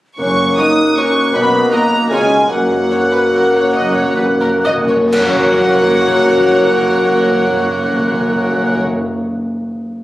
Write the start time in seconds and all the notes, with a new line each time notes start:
0.17 F#1 F#2 A#3 C#4 C#5 C#6 F#6
0.37 A#3
0.56 F#3 C#4 D#4 F#4 A#4 C#5 D#6
0.77 F#4
0.96 F#3 C#4 F#4 A#4 C#5 C#6
1.16 C#4
1.34 B1 B2 B3 D#5 B5
1.52 A#3
1.71 F#3 A#3 D#4 F#4 A#4 D#5 A#5
1.91 F#4
2.10 C#2 C#3 G#3 C#4 F4 G#4 C#5 G#5 F6
2.30 C#4 F4
2.49 F#1 F#2 F#3 A#3 C#5 F#5 F#6
2.69 A#3
2.81 F#2
2.90 F#2 C#4 F#4 C#5
2.98 F#2
3.06 F#2
3.11 F#2 F#4 B4
3.22 F#2
3.30 F#2 C#4 F#4 A#4
3.38 F#2
3.46 F#2
3.52 F#2 C#4 C#5
3.62 F#2
3.71 F#1 F#2 D#5
3.86 F#2
3.93 F#2 A#3 C#5
4.03 F#2
4.12 F#2 B4
4.16 C#4 F#4
4.21 F#2
4.29 F#2
4.39 F#2 F#4 A#4
4.49 F#2
4.58 F#2
4.65 F#2 C#4 F#4 A#4 D#5
4.77 F#2
4.86 F#2 C#4 C#5
4.95 F#2
5.11 F#1 F#2 F#3 A#3 C#4 F#4 A#4 C#5 F#5 F#6, concert bass drum, crash
5.19 F#2 F#3
5.26 F#2 A#3
5.33 F#2 C#4
5.40 F#2 F#4
5.47 F#2 C#5
5.58 F#2
5.66 F#2
5.73 F#2
5.80 F#2
5.87 F#2
5.94 F#2
6.01 F#2
6.09 F#2
6.16 F#2
6.23 F#2
6.30 F#2
6.38 F#2
6.44 F#2
6.51 F#2
6.58 F#2
6.65 F#2
6.72 F#2
6.79 F#2
6.87 F#2
6.94 F#2
7.02 F#2
7.09 F#2
7.17 F#2
7.23 F#2
7.31 F#2
7.38 F#2
7.46 F#2
7.53 F#2
7.60 F#2
7.68 F#2
7.75 F#2
7.82 F#2
7.89 F#2
7.97 F#2
8.04 F#2
8.11 F#2
8.18 F#2
8.25 F#2
8.32 F#2
8.40 F#2
8.47 F#2
8.54 F#2
8.61 F#2
8.68 F#2
8.76 F#2
8.83 F#2